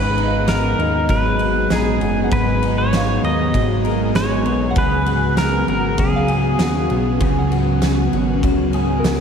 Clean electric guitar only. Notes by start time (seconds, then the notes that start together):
Already playing: G#2 F#3 B3 F#4 G#4
0.17 D#4
0.48 B3
0.79 D#4
1.09 F#3
1.70 D#4
2.02 B3
2.32 G#2
2.62 D#4
2.93 B3
3.24 D#4
3.55 F#3
3.84 A#4
4.16 C#4
4.30 D#4
4.45 B3
4.76 C#3 G#4
5.07 F#4
5.37 B3
5.68 F#4
5.99 F#3
6.29 G#4
6.60 F#4
6.91 B3
7.21 C#3 G#4
7.51 F#4
7.83 B3
8.13 F#4
8.44 F#3
8.74 G#4
9.05 F#4